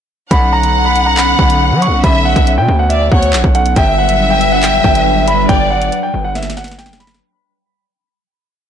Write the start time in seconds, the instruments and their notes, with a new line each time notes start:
0.31 808-style bass B1, analog synth pad D3 B3 C#4, violin section F#5, grand piano B5, kick, closed hi-hat
0.53 grand piano A#5
0.63 closed hi-hat
0.85 grand piano B5
0.96 closed hi-hat
1.06 grand piano A#5
1.17 grand piano B5, clap, closed hi-hat
1.39 808-style bass B1, grand piano B5, kick
1.50 closed hi-hat
1.71 808-style bass F#3
1.82 grand piano C#6, closed hi-hat
1.87 808-style bass B1
2.04 808-style bass B1, violin section E5, grand piano B5, kick, closed hi-hat
2.25 grand piano F#5
2.36 808-style bass B1, kick, closed hi-hat
2.47 closed hi-hat
2.58 808-style bass B2, grand piano G5
2.68 808-style bass D2
2.79 grand piano F#5
2.90 violin section D5, grand piano E5, closed hi-hat
3.12 808-style bass D2, violin section C#5, grand piano F#5, kick
3.22 closed hi-hat
3.33 808-style bass A#1, clap
3.44 808-style bass B1, kick
3.55 grand piano F#5, closed hi-hat
3.66 closed hi-hat
3.76 808-style bass G1, analog synth pad F#3 G3 D4 B4, violin section E5, grand piano G5, kick, closed hi-hat
3.98 grand piano F#5
4.09 closed hi-hat
4.30 grand piano G5
4.41 closed hi-hat
4.52 grand piano F#5
4.63 grand piano G5, clap, closed hi-hat
4.84 808-style bass G1, grand piano G5, kick
4.95 closed hi-hat
5.28 grand piano B5, closed hi-hat
5.49 808-style bass G1, violin section D5, grand piano G5, kick, closed hi-hat
5.70 grand piano F#5
5.82 closed hi-hat
5.92 closed hi-hat
6.03 grand piano G5
6.14 808-style bass G1
6.24 grand piano F#5
6.35 grand piano E5, snare, closed hi-hat
6.43 snare, closed hi-hat
6.50 snare, closed hi-hat
6.57 grand piano F#5, snare
6.64 snare, closed hi-hat
6.72 snare
6.78 grand piano G5, snare
6.86 808-style bass F#1, snare
6.93 snare
7.00 grand piano B5, snare, closed hi-hat
7.05 808-style bass G1, snare
7.11 snare, closed hi-hat